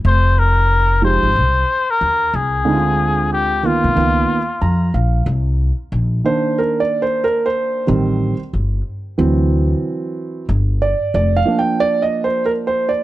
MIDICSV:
0, 0, Header, 1, 4, 480
1, 0, Start_track
1, 0, Key_signature, -3, "minor"
1, 0, Tempo, 652174
1, 38, Time_signature, 4, 2, 24, 8
1, 9593, End_track
2, 0, Start_track
2, 0, Title_t, "Muted trumpet"
2, 0, Program_c, 0, 59
2, 48, Note_on_c, 0, 72, 114
2, 287, Note_on_c, 0, 70, 108
2, 298, Note_off_c, 0, 72, 0
2, 762, Note_off_c, 0, 70, 0
2, 768, Note_on_c, 0, 72, 111
2, 1403, Note_on_c, 0, 70, 97
2, 1414, Note_off_c, 0, 72, 0
2, 1730, Note_on_c, 0, 68, 94
2, 1741, Note_off_c, 0, 70, 0
2, 2444, Note_off_c, 0, 68, 0
2, 2451, Note_on_c, 0, 67, 91
2, 2694, Note_on_c, 0, 65, 100
2, 2705, Note_off_c, 0, 67, 0
2, 3646, Note_off_c, 0, 65, 0
2, 9593, End_track
3, 0, Start_track
3, 0, Title_t, "Grand piano"
3, 0, Program_c, 1, 0
3, 749, Note_on_c, 1, 53, 55
3, 753, Note_on_c, 1, 56, 49
3, 757, Note_on_c, 1, 63, 51
3, 762, Note_on_c, 1, 67, 59
3, 937, Note_off_c, 1, 53, 0
3, 939, Note_off_c, 1, 56, 0
3, 941, Note_off_c, 1, 63, 0
3, 944, Note_off_c, 1, 67, 0
3, 1950, Note_on_c, 1, 50, 70
3, 1954, Note_on_c, 1, 56, 69
3, 1960, Note_on_c, 1, 60, 60
3, 1964, Note_on_c, 1, 63, 66
3, 2010, Note_on_c, 1, 65, 77
3, 2019, Note_off_c, 1, 63, 0
3, 2637, Note_off_c, 1, 50, 0
3, 2638, Note_off_c, 1, 56, 0
3, 2641, Note_off_c, 1, 60, 0
3, 2667, Note_off_c, 1, 65, 0
3, 2672, Note_on_c, 1, 51, 60
3, 2676, Note_on_c, 1, 58, 55
3, 2680, Note_on_c, 1, 59, 54
3, 2686, Note_on_c, 1, 65, 65
3, 2899, Note_off_c, 1, 51, 0
3, 2905, Note_off_c, 1, 58, 0
3, 2907, Note_off_c, 1, 59, 0
3, 2910, Note_on_c, 1, 51, 68
3, 2913, Note_off_c, 1, 65, 0
3, 2916, Note_on_c, 1, 58, 66
3, 2918, Note_on_c, 1, 59, 65
3, 2924, Note_on_c, 1, 65, 76
3, 3212, Note_off_c, 1, 51, 0
3, 3215, Note_off_c, 1, 58, 0
3, 3216, Note_off_c, 1, 59, 0
3, 3219, Note_off_c, 1, 65, 0
3, 3397, Note_on_c, 1, 82, 79
3, 3621, Note_off_c, 1, 82, 0
3, 3637, Note_on_c, 1, 77, 61
3, 3861, Note_off_c, 1, 77, 0
3, 4595, Note_on_c, 1, 51, 43
3, 4600, Note_on_c, 1, 58, 46
3, 4604, Note_on_c, 1, 72, 81
3, 4605, Note_on_c, 1, 62, 55
3, 4845, Note_on_c, 1, 70, 86
3, 4848, Note_off_c, 1, 72, 0
3, 5006, Note_off_c, 1, 70, 0
3, 5006, Note_on_c, 1, 74, 89
3, 5167, Note_off_c, 1, 74, 0
3, 5168, Note_on_c, 1, 72, 83
3, 5328, Note_off_c, 1, 72, 0
3, 5328, Note_on_c, 1, 70, 93
3, 5488, Note_off_c, 1, 70, 0
3, 5488, Note_on_c, 1, 72, 85
3, 5767, Note_off_c, 1, 51, 0
3, 5770, Note_off_c, 1, 58, 0
3, 5772, Note_off_c, 1, 62, 0
3, 5793, Note_on_c, 1, 51, 60
3, 5795, Note_on_c, 1, 55, 52
3, 5799, Note_on_c, 1, 60, 58
3, 6134, Note_off_c, 1, 51, 0
3, 6135, Note_off_c, 1, 55, 0
3, 6138, Note_off_c, 1, 60, 0
3, 6174, Note_off_c, 1, 72, 0
3, 6754, Note_on_c, 1, 52, 58
3, 6758, Note_on_c, 1, 54, 52
3, 6762, Note_on_c, 1, 60, 63
3, 7686, Note_off_c, 1, 52, 0
3, 7689, Note_off_c, 1, 54, 0
3, 7691, Note_off_c, 1, 60, 0
3, 7962, Note_on_c, 1, 74, 82
3, 8194, Note_off_c, 1, 74, 0
3, 8205, Note_on_c, 1, 74, 88
3, 8365, Note_on_c, 1, 77, 90
3, 8366, Note_off_c, 1, 74, 0
3, 8430, Note_on_c, 1, 53, 49
3, 8437, Note_on_c, 1, 58, 46
3, 8440, Note_on_c, 1, 62, 60
3, 8526, Note_off_c, 1, 77, 0
3, 8528, Note_on_c, 1, 79, 84
3, 8687, Note_on_c, 1, 74, 105
3, 8688, Note_off_c, 1, 79, 0
3, 8847, Note_off_c, 1, 74, 0
3, 8849, Note_on_c, 1, 75, 91
3, 9008, Note_off_c, 1, 75, 0
3, 9009, Note_on_c, 1, 72, 86
3, 9153, Note_off_c, 1, 72, 0
3, 9166, Note_on_c, 1, 70, 91
3, 9203, Note_off_c, 1, 70, 0
3, 9326, Note_on_c, 1, 72, 82
3, 9485, Note_on_c, 1, 74, 82
3, 9487, Note_off_c, 1, 72, 0
3, 9593, Note_off_c, 1, 53, 0
3, 9593, Note_off_c, 1, 58, 0
3, 9593, Note_off_c, 1, 62, 0
3, 9593, Note_off_c, 1, 74, 0
3, 9593, End_track
4, 0, Start_track
4, 0, Title_t, "Upright bass"
4, 0, Program_c, 2, 32
4, 34, Note_on_c, 2, 29, 107
4, 873, Note_off_c, 2, 29, 0
4, 905, Note_on_c, 2, 32, 88
4, 999, Note_on_c, 2, 36, 91
4, 1010, Note_off_c, 2, 32, 0
4, 1198, Note_off_c, 2, 36, 0
4, 1480, Note_on_c, 2, 39, 90
4, 1679, Note_off_c, 2, 39, 0
4, 1719, Note_on_c, 2, 36, 94
4, 1958, Note_off_c, 2, 36, 0
4, 1958, Note_on_c, 2, 38, 108
4, 2795, Note_off_c, 2, 38, 0
4, 2827, Note_on_c, 2, 36, 87
4, 2904, Note_off_c, 2, 36, 0
4, 2918, Note_on_c, 2, 37, 94
4, 3118, Note_off_c, 2, 37, 0
4, 3396, Note_on_c, 2, 41, 86
4, 3596, Note_off_c, 2, 41, 0
4, 3636, Note_on_c, 2, 34, 83
4, 3836, Note_off_c, 2, 34, 0
4, 3872, Note_on_c, 2, 36, 99
4, 4195, Note_off_c, 2, 36, 0
4, 4356, Note_on_c, 2, 34, 87
4, 4557, Note_off_c, 2, 34, 0
4, 5801, Note_on_c, 2, 33, 103
4, 6121, Note_off_c, 2, 33, 0
4, 6281, Note_on_c, 2, 31, 87
4, 6479, Note_off_c, 2, 31, 0
4, 6761, Note_on_c, 2, 38, 98
4, 7158, Note_off_c, 2, 38, 0
4, 7718, Note_on_c, 2, 31, 99
4, 8039, Note_off_c, 2, 31, 0
4, 8200, Note_on_c, 2, 29, 94
4, 8399, Note_off_c, 2, 29, 0
4, 9593, End_track
0, 0, End_of_file